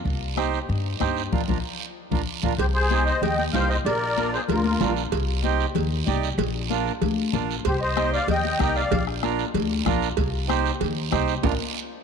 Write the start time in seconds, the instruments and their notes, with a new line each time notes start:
0.05 upright bass C2, bombo low, long guiro
0.37 accordion D#4 G4 C5, bombo rim, high conga, short guiro
0.53 short guiro
0.69 upright bass G2, long guiro
1.00 upright bass G2, accordion D#4 G4 C5, bombo low, bombo rim, high conga, short guiro
1.17 short guiro
1.32 upright bass A#1, accordion D4 F4 A#4, bombo low, low conga, long guiro
1.48 upright bass A#1, accordion D4 F4 A#4, bombo low, low conga, long guiro
2.11 upright bass A#1, accordion D4 F4 A#4, bombo low, low conga, long guiro
2.43 upright bass A#1, accordion D4 F4 A#4, bombo low, low conga, long guiro
2.58 upright bass C2, accordion G4 C5, cowbell, long guiro
2.74 accordion G#4 C5
2.91 accordion D#4 G4 C5, high conga, short guiro
3.06 accordion C5 D#5, short guiro
3.21 upright bass D#2, accordion D#5 G5, cowbell, low conga, long guiro
3.37 accordion D#5 G5, high conga
3.53 upright bass C2, accordion D#4 G4 C5 F5, high conga, low timbale, short guiro
3.69 accordion C5 D#5, short guiro
3.85 upright bass A#1, accordion A#4 D5, cowbell, long guiro
4.17 accordion D4 F4 A#4, high conga, short guiro
4.33 accordion G#4 C5, short guiro
4.49 upright bass D2, accordion F4 A#4, cowbell, low conga, long guiro
4.64 high conga
4.81 upright bass A#1, accordion D4 F4 A#4, high conga, low conga, low timbale, short guiro
4.97 short guiro
5.12 upright bass C2, cowbell, long guiro
5.44 accordion D#4 G4 C5, high conga, short guiro
5.60 short guiro
5.75 upright bass D#2, cowbell, low conga, long guiro
6.07 upright bass C2, accordion D#4 G4 D5, high conga, short guiro
6.23 short guiro
6.38 upright bass A#1, cowbell, low conga, long guiro
6.70 accordion D4 F4 A#4, high conga, short guiro
6.87 short guiro
7.01 upright bass D2, cowbell, low conga, long guiro
7.33 upright bass A#1, accordion D4 F4 A#4, high conga, low conga, short guiro
7.51 short guiro
7.65 upright bass C2, accordion G4 C5, bombo low, cowbell, long guiro
7.81 accordion C5 D#5
7.96 accordion D#4 G4 C5, bombo rim, high conga, short guiro
8.13 accordion D5 F5, short guiro
8.27 upright bass D#2, accordion D#5 G5, cowbell, low conga, long guiro
8.44 high conga
8.59 upright bass C2, accordion D#4 G4 A#4 D#5 G5, bombo low, bombo rim, high conga, short guiro
8.76 accordion D5 F5, short guiro
8.91 upright bass A#1, bombo low, cowbell, low conga, long guiro
9.07 bombo rim
9.22 accordion D4 F4 A#4, bombo rim, high conga, short guiro
9.39 short guiro
9.54 upright bass D2, cowbell, low conga, long guiro
9.86 upright bass A#1, accordion D4 F4 A#4, bombo low, bombo rim, high conga, low conga, short guiro
10.02 short guiro
10.17 upright bass C2, bombo low, cowbell, long guiro
10.48 accordion D#4 G4 C5, bombo rim, high conga, short guiro
10.66 short guiro
10.81 upright bass D#2, cowbell, low conga, long guiro
11.11 upright bass C2, accordion D#4 G4 C5, bombo low, bombo rim, high conga, short guiro
11.28 short guiro
11.43 upright bass A#1, accordion D4 F4 A#4, bombo low, high conga, high timbale, long guiro